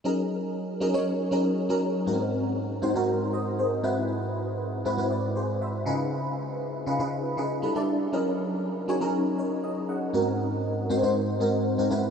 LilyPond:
\new Staff \with { instrumentName = "FM electric piano" } { \time 4/4 \key fis \major \tempo 4 = 119 << { r1 | r2 r8 <bis' dis''>8 <gis' bis'>4 | r2 <b' d''>8 <gis' bis'>8 <bis' e''>4 | r1 |
r2 r8 <ais' cis''>8 dis''8 <dis'' fis''>8~ | <dis'' fis''>8 r2. r8 | } \\ { <fis cis' dis' gis' ais'>4 r8 <fis cis' dis' gis' ais'>16 <fis cis' dis' gis' cis''>8 r16 <fis cis' dis' gis' ais'>8 r16 <fis cis' dis' gis' ais'>8 r16 | <gis, ais bis dis' fis' ais'>4 r8 <gis, bis dis' fis' bis'>16 <gis, bis dis' fis' ais'>8 r4 r16 <gis, bis e' fis' b'>8~ | <gis, bis e' fis' b'>4 r8 <gis, bis e' fis' b'>16 <gis, bis e' fis' b'>8 r4 r16 <cis dis' eis' gis' b'>8~ | <cis dis' eis' gis' b'>4 r8 <cis dis' eis' gis' b'>16 <cis dis' eis' gis' b'>8 r16 <cis dis' eis' gis' b'>8 <g d' e' a' b'>16 <g d' e' a' d''>8 r16 |
<fis cis' dis' gis' ais'>4 r8 <fis cis' dis' gis' cis''>16 <fis cis' dis' gis' ais'>8 r4. r16 | <gis, bis dis' fis' ais'>4 r8 <gis, bis dis' fis' bis'>16 <gis, bis dis' fis' bis'>8 r16 <gis, bis dis' fis' ais'>8 r16 <gis, bis dis' fis' ais'>16 <gis, bis e' fis' b'>8 | } >> }